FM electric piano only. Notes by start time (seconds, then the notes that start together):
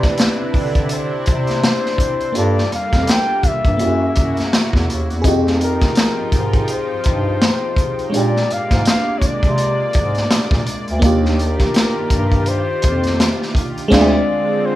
Already playing: C4 D4 E4 G4 D5
2.32 A#3 D4 F4
2.37 G4 A4
3.77 A#3 C#4 F#4
3.82 E4 G4
3.90 G#4
5.22 C4 D#4 G#4
5.27 F4 G4
8.10 G#3 C4 D4
8.14 F4 G4
10.99 A#3 D4 D#4
11.04 F4 G4
13.88 G#3 C4 D4
13.93 F4
14.01 G#4